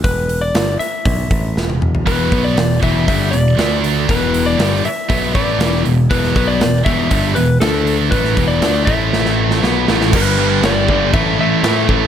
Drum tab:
CC |----------------|----------------|----------------|----------------|
HH |o-o-o-o-o-o-----|o-o-o-o-o-o-o-o-|o-o-o-o-o-o-o-o-|o-o-o-o-o-o-o-o-|
SD |----o-------o---|----o-------o---|----o-------o---|-o--o-------o---|
T1 |-------------o--|----------------|----------------|----------------|
T2 |--------------o-|----------------|----------------|----------------|
FT |---------------o|----------------|----------------|----------------|
BD |o-------o-o-----|o-o---o-o-------|o-------o-o-----|o-o---o-o-------|

CC |----------------|x---x---x---x---|
HH |o-o-o-o---------|----------------|
SD |-o--o---oo-oo-oo|----o-------o---|
T1 |----------------|----------------|
T2 |----------------|----------------|
FT |----------------|----------------|
BD |o-o---o---------|o-----o-o-----o-|